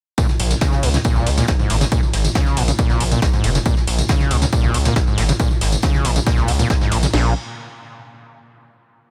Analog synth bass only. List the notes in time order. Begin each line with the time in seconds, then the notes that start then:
0.40 A#1
0.83 C#2
1.16 C#2
1.27 C#2
1.70 G#1
2.13 G#1
2.57 A#1
2.90 A#1
3.00 A#1
3.44 F1
3.87 A#1
4.31 C#2
4.64 C#2
4.74 C#2
5.18 G#1
5.61 G#1
6.05 A#1
6.38 C#2
6.48 C#2
6.92 A#1
7.14 A#1